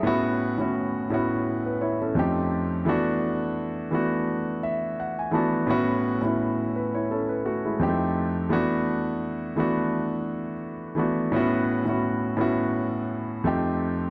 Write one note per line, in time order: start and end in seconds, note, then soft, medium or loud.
0.00 0.39 A2 medium
0.00 0.40 B3 medium
0.00 0.23 G#4 medium
0.00 0.23 E5 medium
0.05 0.41 C#4 medium
0.05 0.41 E4 medium
0.05 0.41 F#4 loud
0.58 0.94 A2 medium
0.58 0.95 B3 medium
0.58 0.95 C#4 medium
0.58 0.96 E4 medium
0.58 0.96 F#4 medium
1.10 2.05 A2 medium
1.10 2.06 B3 medium
1.10 1.47 C#4 medium
1.10 1.47 E4 medium
1.10 1.48 F#4 medium
1.66 1.81 B4 medium
1.81 2.00 E4 medium
1.81 2.00 C#5 medium
2.01 2.35 C#4 medium
2.01 2.35 A4 medium
2.15 2.73 F2 medium
2.15 2.74 A3 medium
2.15 2.75 C4 medium
2.15 2.75 D#4 medium
2.19 2.76 G4 medium
2.85 3.57 E3 medium
2.85 3.57 A3 medium
2.85 3.57 B3 medium
2.85 3.58 D4 medium
2.89 3.59 F#4 medium
3.91 4.87 E3 medium
3.91 4.88 A3 medium
3.91 4.88 B3 medium
3.91 4.89 D4 medium
3.91 4.89 F#4 medium
4.63 4.96 E5 medium
5.00 5.17 F#5 medium
5.19 5.34 G#5 medium
5.31 5.57 E3 medium
5.31 5.58 A3 medium
5.31 5.58 B3 medium
5.31 5.59 D4 medium
5.31 5.59 F#4 medium
5.31 5.67 A5 medium
5.67 6.03 A2 medium
5.67 6.04 B3 medium
5.67 6.05 C#4 medium
5.67 6.05 E4 medium
5.67 6.05 F#4 loud
6.21 6.58 A2 medium
6.21 6.59 B3 medium
6.21 6.59 C#4 medium
6.21 6.60 E4 medium
6.21 6.60 F#4 medium
6.76 6.94 B4 medium
6.95 7.11 E4 medium
6.95 7.10 C#5 medium
7.11 7.29 C#4 medium
7.11 7.29 A4 medium
7.29 7.45 B4 medium
7.46 7.64 A3 medium
7.46 7.64 F#4 medium
7.65 7.79 G#3 medium
7.65 7.99 E4 medium
7.79 8.38 F2 medium
7.79 7.88 G#3 medium
7.79 8.39 C4 medium
7.79 8.39 D#4 medium
7.79 8.40 G4 medium
7.87 8.42 A3 medium
8.49 9.21 E3 medium
8.49 9.22 A3 medium
8.49 9.22 B3 medium
8.49 9.22 D4 medium
8.49 9.23 F#4 medium
9.56 10.52 E3 medium
9.56 10.52 A3 medium
9.56 10.53 B3 medium
9.56 10.53 D4 medium
9.56 10.54 F#4 medium
10.95 11.22 E3 medium
10.95 11.22 A3 medium
10.95 11.23 B3 medium
10.95 11.23 D4 medium
10.99 11.24 F#4 medium
11.32 11.68 A2 medium
11.32 11.69 B3 medium
11.32 11.70 C#4 medium
11.32 11.70 E4 medium
11.36 11.71 F#4 medium
11.85 12.22 A2 medium
11.85 12.23 B3 medium
11.85 12.23 C#4 medium
11.85 12.24 E4 medium
11.89 12.24 F#4 medium
12.37 13.33 A2 medium
12.37 13.34 B3 medium
12.37 13.34 C#4 medium
12.37 13.35 E4 medium
12.41 13.35 F#4 medium
13.44 14.03 F2 medium
13.44 14.03 A3 medium
13.44 14.04 C4 medium
13.44 14.04 D#4 medium
13.44 14.04 G4 medium